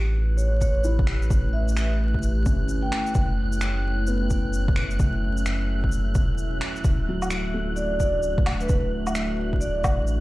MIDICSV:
0, 0, Header, 1, 7, 480
1, 0, Start_track
1, 0, Tempo, 461538
1, 1361, Time_signature, 4, 2, 24, 8
1, 10611, End_track
2, 0, Start_track
2, 0, Title_t, "Synth texture"
2, 0, Program_c, 0, 99
2, 0, Note_on_c, 0, 90, 79
2, 10611, Note_off_c, 0, 90, 0
2, 10611, End_track
3, 0, Start_track
3, 0, Title_t, "Vibraphone"
3, 0, Program_c, 1, 11
3, 385, Note_on_c, 1, 73, 85
3, 616, Note_off_c, 1, 73, 0
3, 631, Note_on_c, 1, 73, 87
3, 891, Note_off_c, 1, 73, 0
3, 1592, Note_on_c, 1, 76, 85
3, 2077, Note_off_c, 1, 76, 0
3, 2937, Note_on_c, 1, 79, 87
3, 3334, Note_off_c, 1, 79, 0
3, 8071, Note_on_c, 1, 74, 89
3, 8299, Note_off_c, 1, 74, 0
3, 8314, Note_on_c, 1, 74, 84
3, 8573, Note_off_c, 1, 74, 0
3, 8949, Note_on_c, 1, 71, 85
3, 9200, Note_off_c, 1, 71, 0
3, 9428, Note_on_c, 1, 76, 85
3, 9486, Note_off_c, 1, 76, 0
3, 9498, Note_on_c, 1, 76, 71
3, 9608, Note_off_c, 1, 76, 0
3, 9990, Note_on_c, 1, 74, 86
3, 10389, Note_off_c, 1, 74, 0
3, 10611, End_track
4, 0, Start_track
4, 0, Title_t, "Ambient pad"
4, 0, Program_c, 2, 92
4, 0, Note_on_c, 2, 57, 73
4, 0, Note_on_c, 2, 61, 69
4, 0, Note_on_c, 2, 64, 70
4, 0, Note_on_c, 2, 67, 69
4, 0, Note_on_c, 2, 71, 85
4, 3238, Note_off_c, 2, 57, 0
4, 3238, Note_off_c, 2, 67, 0
4, 3239, Note_off_c, 2, 71, 0
4, 3270, Note_on_c, 2, 66, 69
4, 3271, Note_on_c, 2, 57, 75
4, 3271, Note_on_c, 2, 76, 84
4, 7073, Note_off_c, 2, 61, 0
4, 7076, Note_off_c, 2, 64, 0
4, 7078, Note_off_c, 2, 57, 0
4, 7118, Note_on_c, 2, 57, 76
4, 7125, Note_on_c, 2, 62, 69
4, 7127, Note_on_c, 2, 64, 69
4, 10611, Note_off_c, 2, 57, 0
4, 10611, Note_off_c, 2, 62, 0
4, 10611, Note_off_c, 2, 64, 0
4, 10611, Note_off_c, 2, 66, 0
4, 10611, Note_off_c, 2, 76, 0
4, 10611, End_track
5, 0, Start_track
5, 0, Title_t, "Felt piano"
5, 0, Program_c, 3, 0
5, 0, Control_c, 3, 64, 127
5, 0, Note_on_c, 3, 67, 67
5, 294, Note_off_c, 3, 67, 0
5, 875, Note_on_c, 3, 64, 69
5, 1496, Note_off_c, 3, 64, 0
5, 2555, Note_on_c, 3, 61, 52
5, 3176, Note_off_c, 3, 61, 0
5, 3293, Control_c, 3, 64, 0
5, 3482, Control_c, 3, 64, 127
5, 4236, Note_on_c, 3, 59, 52
5, 4856, Note_off_c, 3, 59, 0
5, 7136, Control_c, 3, 64, 0
5, 7317, Control_c, 3, 64, 127
5, 7366, Note_on_c, 3, 54, 53
5, 7841, Note_on_c, 3, 57, 55
5, 7981, Note_off_c, 3, 54, 0
5, 8458, Note_off_c, 3, 57, 0
5, 10611, End_track
6, 0, Start_track
6, 0, Title_t, "Sub bass"
6, 0, Program_c, 4, 38
6, 0, Note_on_c, 4, 33, 92
6, 1348, Note_off_c, 4, 33, 0
6, 1356, Note_on_c, 4, 33, 95
6, 2547, Note_off_c, 4, 33, 0
6, 2560, Note_on_c, 4, 31, 79
6, 3029, Note_off_c, 4, 31, 0
6, 3276, Note_on_c, 4, 30, 96
6, 5187, Note_off_c, 4, 30, 0
6, 5197, Note_on_c, 4, 30, 96
6, 6388, Note_off_c, 4, 30, 0
6, 6394, Note_on_c, 4, 28, 76
6, 6867, Note_off_c, 4, 28, 0
6, 7120, Note_on_c, 4, 26, 95
6, 9029, Note_off_c, 4, 26, 0
6, 9042, Note_on_c, 4, 26, 98
6, 10231, Note_off_c, 4, 26, 0
6, 10236, Note_on_c, 4, 33, 79
6, 10611, Note_off_c, 4, 33, 0
6, 10611, End_track
7, 0, Start_track
7, 0, Title_t, "Drums"
7, 397, Note_on_c, 9, 82, 53
7, 501, Note_off_c, 9, 82, 0
7, 637, Note_on_c, 9, 82, 55
7, 638, Note_on_c, 9, 36, 57
7, 741, Note_off_c, 9, 82, 0
7, 742, Note_off_c, 9, 36, 0
7, 875, Note_on_c, 9, 82, 56
7, 979, Note_off_c, 9, 82, 0
7, 1030, Note_on_c, 9, 36, 100
7, 1114, Note_on_c, 9, 26, 101
7, 1134, Note_off_c, 9, 36, 0
7, 1218, Note_off_c, 9, 26, 0
7, 1273, Note_on_c, 9, 82, 30
7, 1356, Note_on_c, 9, 36, 113
7, 1359, Note_off_c, 9, 82, 0
7, 1359, Note_on_c, 9, 82, 56
7, 1460, Note_off_c, 9, 36, 0
7, 1463, Note_off_c, 9, 82, 0
7, 1751, Note_on_c, 9, 82, 57
7, 1836, Note_off_c, 9, 82, 0
7, 1836, Note_on_c, 9, 26, 103
7, 1836, Note_on_c, 9, 82, 55
7, 1940, Note_off_c, 9, 26, 0
7, 1940, Note_off_c, 9, 82, 0
7, 2229, Note_on_c, 9, 36, 58
7, 2315, Note_on_c, 9, 82, 55
7, 2333, Note_off_c, 9, 36, 0
7, 2419, Note_off_c, 9, 82, 0
7, 2556, Note_on_c, 9, 82, 55
7, 2558, Note_on_c, 9, 36, 101
7, 2660, Note_off_c, 9, 82, 0
7, 2662, Note_off_c, 9, 36, 0
7, 2795, Note_on_c, 9, 82, 55
7, 2899, Note_off_c, 9, 82, 0
7, 3037, Note_on_c, 9, 26, 101
7, 3141, Note_off_c, 9, 26, 0
7, 3188, Note_on_c, 9, 82, 32
7, 3273, Note_off_c, 9, 82, 0
7, 3273, Note_on_c, 9, 82, 55
7, 3277, Note_on_c, 9, 36, 117
7, 3377, Note_off_c, 9, 82, 0
7, 3381, Note_off_c, 9, 36, 0
7, 3666, Note_on_c, 9, 82, 53
7, 3755, Note_off_c, 9, 82, 0
7, 3755, Note_on_c, 9, 26, 101
7, 3755, Note_on_c, 9, 82, 55
7, 3859, Note_off_c, 9, 26, 0
7, 3859, Note_off_c, 9, 82, 0
7, 4232, Note_on_c, 9, 82, 53
7, 4336, Note_off_c, 9, 82, 0
7, 4473, Note_on_c, 9, 82, 52
7, 4478, Note_on_c, 9, 36, 61
7, 4577, Note_off_c, 9, 82, 0
7, 4582, Note_off_c, 9, 36, 0
7, 4714, Note_on_c, 9, 82, 53
7, 4818, Note_off_c, 9, 82, 0
7, 4871, Note_on_c, 9, 36, 102
7, 4950, Note_on_c, 9, 26, 104
7, 4975, Note_off_c, 9, 36, 0
7, 5054, Note_off_c, 9, 26, 0
7, 5104, Note_on_c, 9, 82, 29
7, 5194, Note_off_c, 9, 82, 0
7, 5194, Note_on_c, 9, 82, 51
7, 5196, Note_on_c, 9, 36, 113
7, 5298, Note_off_c, 9, 82, 0
7, 5300, Note_off_c, 9, 36, 0
7, 5588, Note_on_c, 9, 82, 54
7, 5677, Note_off_c, 9, 82, 0
7, 5677, Note_on_c, 9, 26, 102
7, 5677, Note_on_c, 9, 82, 51
7, 5781, Note_off_c, 9, 26, 0
7, 5781, Note_off_c, 9, 82, 0
7, 6071, Note_on_c, 9, 36, 60
7, 6155, Note_on_c, 9, 82, 51
7, 6175, Note_off_c, 9, 36, 0
7, 6259, Note_off_c, 9, 82, 0
7, 6395, Note_on_c, 9, 82, 52
7, 6398, Note_on_c, 9, 36, 104
7, 6499, Note_off_c, 9, 82, 0
7, 6502, Note_off_c, 9, 36, 0
7, 6636, Note_on_c, 9, 82, 52
7, 6740, Note_off_c, 9, 82, 0
7, 6875, Note_on_c, 9, 26, 102
7, 6979, Note_off_c, 9, 26, 0
7, 7032, Note_on_c, 9, 82, 30
7, 7118, Note_off_c, 9, 82, 0
7, 7118, Note_on_c, 9, 36, 109
7, 7118, Note_on_c, 9, 82, 51
7, 7222, Note_off_c, 9, 36, 0
7, 7222, Note_off_c, 9, 82, 0
7, 7509, Note_on_c, 9, 77, 33
7, 7509, Note_on_c, 9, 82, 50
7, 7596, Note_off_c, 9, 82, 0
7, 7596, Note_on_c, 9, 26, 100
7, 7596, Note_on_c, 9, 82, 50
7, 7613, Note_off_c, 9, 77, 0
7, 7700, Note_off_c, 9, 26, 0
7, 7700, Note_off_c, 9, 82, 0
7, 8076, Note_on_c, 9, 82, 49
7, 8180, Note_off_c, 9, 82, 0
7, 8320, Note_on_c, 9, 36, 58
7, 8320, Note_on_c, 9, 82, 51
7, 8424, Note_off_c, 9, 36, 0
7, 8424, Note_off_c, 9, 82, 0
7, 8557, Note_on_c, 9, 82, 51
7, 8661, Note_off_c, 9, 82, 0
7, 8715, Note_on_c, 9, 36, 100
7, 8800, Note_on_c, 9, 26, 102
7, 8800, Note_on_c, 9, 77, 49
7, 8819, Note_off_c, 9, 36, 0
7, 8904, Note_off_c, 9, 26, 0
7, 8904, Note_off_c, 9, 77, 0
7, 8950, Note_on_c, 9, 82, 29
7, 9037, Note_off_c, 9, 82, 0
7, 9037, Note_on_c, 9, 82, 49
7, 9042, Note_on_c, 9, 36, 110
7, 9141, Note_off_c, 9, 82, 0
7, 9146, Note_off_c, 9, 36, 0
7, 9429, Note_on_c, 9, 77, 34
7, 9429, Note_on_c, 9, 82, 52
7, 9517, Note_off_c, 9, 82, 0
7, 9517, Note_on_c, 9, 26, 95
7, 9517, Note_on_c, 9, 82, 51
7, 9533, Note_off_c, 9, 77, 0
7, 9621, Note_off_c, 9, 26, 0
7, 9621, Note_off_c, 9, 82, 0
7, 9911, Note_on_c, 9, 36, 55
7, 9996, Note_on_c, 9, 82, 50
7, 10015, Note_off_c, 9, 36, 0
7, 10100, Note_off_c, 9, 82, 0
7, 10235, Note_on_c, 9, 77, 57
7, 10235, Note_on_c, 9, 82, 51
7, 10237, Note_on_c, 9, 36, 100
7, 10339, Note_off_c, 9, 77, 0
7, 10339, Note_off_c, 9, 82, 0
7, 10341, Note_off_c, 9, 36, 0
7, 10476, Note_on_c, 9, 82, 50
7, 10580, Note_off_c, 9, 82, 0
7, 10611, End_track
0, 0, End_of_file